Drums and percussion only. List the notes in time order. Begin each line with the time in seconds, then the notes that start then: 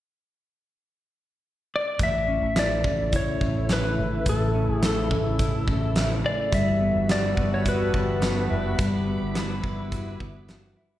1.99 kick, closed hi-hat
2.56 snare, closed hi-hat
2.84 kick
3.13 kick, closed hi-hat
3.41 kick
3.69 snare, closed hi-hat
4.26 kick, closed hi-hat
4.83 snare, closed hi-hat
5.11 kick
5.39 kick, closed hi-hat
5.68 kick
5.96 snare, closed hi-hat
6.52 kick, closed hi-hat
7.09 snare, closed hi-hat
7.37 kick
7.65 kick, closed hi-hat
7.94 kick
8.22 snare, closed hi-hat
8.79 kick, closed hi-hat
9.35 snare, closed hi-hat
9.64 kick
9.92 kick, closed hi-hat
10.20 kick
10.48 snare, closed hi-hat